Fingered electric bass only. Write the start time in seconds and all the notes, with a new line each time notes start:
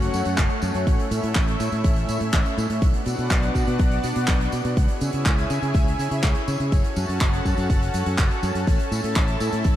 0.14 F#2
0.26 F#2
0.38 F#1
0.62 F#2
0.75 F#2
0.87 A1
1.11 A2
1.23 A2
1.36 A1
1.60 A2
1.72 A2
1.84 A1
2.09 A2
2.21 A2
2.33 A1
2.58 A2
2.70 A2
2.82 B1
3.06 B2
3.19 B2
3.31 B1
3.55 B2
3.67 B2
3.79 B1
4.04 B2
4.16 B2
4.28 B1
4.53 B2
4.65 B2
4.77 C#2
5.01 C#3
5.14 C#3
5.26 C#2
5.50 C#3
5.62 C#3
5.75 C#2
5.99 C#3
6.11 C#3
6.23 C#2
6.48 C#3
6.60 C#3
6.72 F#1
6.97 F#2
7.09 F#2
7.21 F#1
7.45 F#2
7.58 F#2
7.70 F#1
7.94 F#2
8.06 F#2
8.19 F#1
8.43 F#2
8.55 F#2
8.67 A1
8.92 A2
9.04 A2
9.16 A1
9.40 A2
9.53 A2
9.65 A1